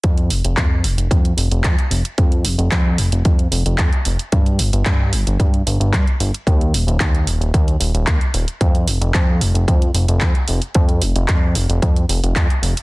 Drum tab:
HH |xxoxx-oxxxoxxxox|xxoxx-oxxxoxxxox|xxoxx-oxxxoxxxox|xxoxxxoxxxoxxxox|
CP |----x-------x---|----x-------x---|----x-------x---|----x-------x---|
BD |o---o---o---o---|o---o---o---o---|o---o---o---o---|o---o---o---o---|

HH |xxoxx-oxxxoxxxox|xxoxx-oxxxoxxxox|
CP |----x-------x---|----x-------x---|
BD |o---o---o---o---|o---o---o---o---|